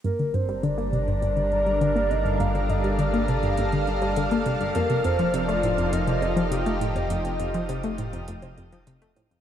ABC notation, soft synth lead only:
X:1
M:4/4
L:1/8
Q:1/4=102
K:Gm
V:1 name="Soft synth lead"
B c d2 d3 e | f e d4 z2 | B c d2 e4- | e6 z2 |]